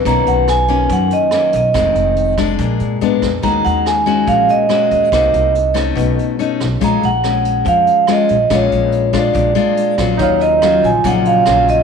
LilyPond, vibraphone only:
\new Staff \with { instrumentName = "Vibraphone" } { \time 4/4 \key bes \minor \tempo 4 = 142 ais''8 fis''8 aes''4 fis''8 dis''4 dis''8~ | dis''4. r2 r8 | bes''8 ges''8 aes''4 f''8 ees''4 ees''8~ | ees''4. r2 r8 |
bes''8 ges''4. f''4 ees''4 | des''4. d''2 r8 | \key ees \minor des''8 ees''4 aes''8 ges''8 f''4 ees''8 | }